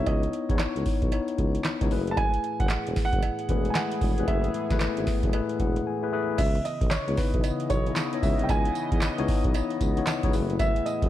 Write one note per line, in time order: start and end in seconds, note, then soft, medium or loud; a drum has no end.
0.00 0.07 B3 medium
0.00 0.07 D#4 medium
0.00 0.08 E4 medium
0.00 0.08 C#5 loud
0.06 0.26 C#2 loud
0.06 0.45 B3 medium
0.06 0.45 D#4 medium
0.06 0.45 E4 medium
0.06 0.45 C#5 medium
0.06 0.61 D#5 medium
0.06 kick loud
0.06 closed hi-hat medium
0.06 cowbell medium
0.23 closed hi-hat medium
0.33 closed hi-hat medium
0.49 0.57 E2 medium
0.49 1.07 B3 medium
0.49 1.08 D#4 medium
0.49 1.08 E4 medium
0.49 1.08 C#5 loud
0.49 kick loud
0.49 closed hi-hat medium
0.59 1.87 C#5 medium
0.59 snare loud
0.59 clap medium
0.59 closed hi-hat medium
0.59 cowbell medium
0.76 0.83 C#2 medium
0.76 closed hi-hat medium
0.86 kick medium
0.86 open hi-hat medium
1.02 1.10 B1 medium
1.02 kick medium
1.02 closed hi-hat medium
1.12 1.73 B3 medium
1.12 1.74 D#4 medium
1.12 1.74 E4 medium
1.12 1.74 C#5 medium
1.12 closed hi-hat medium
1.12 cowbell medium
1.28 closed hi-hat soft
1.38 1.58 C#2 medium
1.38 kick medium
1.38 closed hi-hat medium
1.55 closed hi-hat soft
1.64 1.72 C#2 soft
1.64 snare loud
1.64 clap medium
1.64 closed hi-hat medium
1.64 cowbell medium
1.81 1.89 C#2 loud
1.81 1.90 B3 medium
1.81 1.90 D#4 medium
1.81 1.90 E4 medium
1.81 1.91 C#5 loud
1.81 kick medium
1.81 closed hi-hat medium
1.91 2.30 F#1 medium
1.91 2.89 A3 medium
1.91 2.89 E4 medium
1.91 2.89 G#4 medium
1.91 2.89 B4 loud
1.91 open hi-hat medium
2.07 2.17 A5 medium
2.07 closed hi-hat soft
2.17 6.34 A2 medium
2.17 6.34 E3 medium
2.17 6.34 B3 medium
2.17 6.34 G#4 loud
2.17 2.61 G#5 loud
2.17 kick loud
2.17 closed hi-hat medium
2.17 cowbell medium
2.34 closed hi-hat soft
2.44 closed hi-hat medium
2.60 2.67 F#1 medium
2.60 2.94 F#5 loud
2.60 kick loud
2.60 closed hi-hat medium
2.69 snare loud
2.69 clap medium
2.69 closed hi-hat medium
2.69 cowbell medium
2.87 2.94 E1 medium
2.87 closed hi-hat soft
2.96 kick medium
2.96 snare medium
2.96 open hi-hat medium
3.05 3.72 F#5 loud
3.13 3.20 F#1 medium
3.13 kick medium
3.13 closed hi-hat medium
3.23 closed hi-hat medium
3.23 cowbell medium
3.39 closed hi-hat soft
3.49 3.68 E1 medium
3.49 3.57 G#3 medium
3.49 4.10 E4 medium
3.49 4.11 G#4 medium
3.49 4.11 B4 medium
3.49 kick medium
3.49 closed hi-hat medium
3.55 4.13 A3 medium
3.65 closed hi-hat soft
3.70 3.75 G#5 medium
3.75 4.29 F#5 medium
3.75 snare loud
3.75 clap medium
3.75 closed hi-hat medium
3.75 cowbell medium
3.92 closed hi-hat medium
4.01 4.14 E1 medium
4.01 kick medium
4.01 open hi-hat medium
4.18 4.25 F1 medium
4.18 4.27 A3 medium
4.18 4.27 E4 medium
4.18 4.28 G#4 medium
4.18 4.28 B4 medium
4.18 closed hi-hat medium
4.28 4.47 F#1 loud
4.28 4.66 A3 medium
4.28 4.66 E4 medium
4.28 4.66 G#4 medium
4.28 4.67 B4 medium
4.28 5.82 E5 medium
4.28 kick loud
4.28 closed hi-hat medium
4.28 cowbell medium
4.44 closed hi-hat medium
4.54 closed hi-hat medium
4.70 4.78 F#1 medium
4.70 5.29 A3 medium
4.70 5.29 E4 medium
4.70 5.29 G#4 medium
4.70 5.29 B4 medium
4.70 kick loud
4.70 snare medium
4.70 closed hi-hat medium
4.80 snare loud
4.80 clap medium
4.80 closed hi-hat medium
4.80 cowbell medium
4.97 5.05 G#1 medium
4.97 closed hi-hat medium
5.07 kick medium
5.07 snare medium
5.07 open hi-hat medium
5.23 5.31 F#1 medium
5.23 kick medium
5.23 closed hi-hat medium
5.33 5.94 A3 medium
5.33 5.94 E4 medium
5.33 5.95 G#4 medium
5.33 5.95 B4 loud
5.33 closed hi-hat medium
5.33 cowbell medium
5.49 closed hi-hat soft
5.60 5.79 E1 medium
5.60 5.85 F#5 medium
5.60 kick medium
5.60 closed hi-hat medium
5.76 closed hi-hat soft
5.87 6.02 G#5 medium
6.03 6.11 A3 medium
6.03 6.12 E4 medium
6.03 6.12 G#4 medium
6.03 6.12 B4 loud
6.03 6.36 G#5 medium
6.12 6.38 A3 loud
6.12 6.39 E4 medium
6.12 6.39 G#4 medium
6.12 6.39 B4 loud
6.38 6.58 C#2 loud
6.38 10.29 C#3 medium
6.38 10.30 E3 medium
6.38 11.09 B3 medium
6.38 10.30 D#5 loud
6.38 6.65 E5 medium
6.38 kick loud
6.38 closed hi-hat medium
6.38 crash medium
6.38 tambourine medium
6.38 cowbell medium
6.55 closed hi-hat soft
6.65 6.92 D#5 medium
6.65 closed hi-hat medium
6.65 tambourine medium
6.81 6.89 B1 medium
6.81 kick loud
6.81 closed hi-hat medium
6.91 7.18 C#5 loud
6.91 snare loud
6.91 clap medium
6.91 closed hi-hat medium
6.91 tambourine medium
6.91 cowbell medium
7.08 7.15 C#2 medium
7.08 7.77 B3 medium
7.08 7.77 D#4 medium
7.08 7.77 E4 medium
7.08 7.78 C#5 medium
7.08 closed hi-hat medium
7.17 7.71 B4 medium
7.17 kick medium
7.17 snare medium
7.17 open hi-hat medium
7.34 7.41 B1 medium
7.34 kick medium
7.34 closed hi-hat medium
7.44 closed hi-hat medium
7.44 tambourine medium
7.44 cowbell medium
7.60 closed hi-hat soft
7.70 7.89 B1 medium
7.70 8.24 C#5 loud
7.70 kick medium
7.70 closed hi-hat medium
7.70 tambourine medium
7.86 8.10 B3 medium
7.86 8.10 D#4 medium
7.86 8.10 E4 medium
7.86 8.10 C#5 medium
7.86 closed hi-hat soft
7.96 snare loud
7.96 clap medium
7.96 closed hi-hat medium
7.96 tambourine loud
7.96 cowbell medium
8.13 9.06 B3 medium
8.13 9.06 D#4 medium
8.13 9.06 E4 medium
8.13 9.06 C#5 loud
8.13 closed hi-hat medium
8.23 8.35 C#2 medium
8.23 8.44 E5 medium
8.23 kick medium
8.23 open hi-hat medium
8.23 tambourine medium
8.39 8.47 C2 medium
8.39 closed hi-hat soft
8.44 8.49 G5 medium
8.49 8.68 C#2 loud
8.49 9.24 G#5 loud
8.49 kick loud
8.49 closed hi-hat medium
8.49 tambourine medium
8.49 cowbell medium
8.65 closed hi-hat medium
8.75 closed hi-hat medium
8.75 tambourine medium
8.92 8.99 E2 medium
8.92 kick loud
8.92 closed hi-hat medium
9.01 snare loud
9.01 clap medium
9.01 closed hi-hat medium
9.01 tambourine medium
9.01 cowbell medium
9.18 9.26 C#2 medium
9.18 9.88 B3 loud
9.18 9.88 D#4 medium
9.18 9.88 E4 loud
9.18 9.88 C#5 loud
9.18 closed hi-hat medium
9.28 kick loud
9.28 open hi-hat medium
9.44 9.52 B1 medium
9.44 kick medium
9.44 closed hi-hat medium
9.54 closed hi-hat medium
9.54 tambourine medium
9.54 cowbell medium
9.70 closed hi-hat soft
9.81 10.00 C#2 medium
9.81 kick medium
9.81 closed hi-hat medium
9.81 tambourine medium
9.97 10.20 B3 medium
9.97 10.20 D#4 medium
9.97 10.21 E4 medium
9.97 10.21 C#5 medium
9.97 closed hi-hat soft
10.07 10.14 C#2 medium
10.07 snare loud
10.07 clap medium
10.07 closed hi-hat medium
10.07 tambourine loud
10.07 cowbell medium
10.23 10.31 C#2 loud
10.23 10.33 B3 medium
10.23 10.34 D#4 medium
10.23 10.32 E4 loud
10.23 10.34 C#5 loud
10.23 kick medium
10.23 closed hi-hat medium
10.33 10.72 F#1 loud
10.33 11.09 A2 medium
10.33 11.09 E3 medium
10.33 10.41 G#3 medium
10.33 11.09 E4 medium
10.33 11.09 G#4 loud
10.33 11.09 G#4 medium
10.33 11.09 B4 medium
10.33 open hi-hat medium
10.33 tambourine medium
10.39 11.09 A3 loud
10.50 closed hi-hat soft
10.59 10.87 E5 loud
10.59 kick loud
10.59 closed hi-hat medium
10.59 tambourine medium
10.59 cowbell medium
10.76 closed hi-hat medium
10.86 11.09 D#5 medium
10.86 closed hi-hat medium
10.86 tambourine medium
11.02 11.09 F#1 medium
11.02 kick loud
11.02 closed hi-hat medium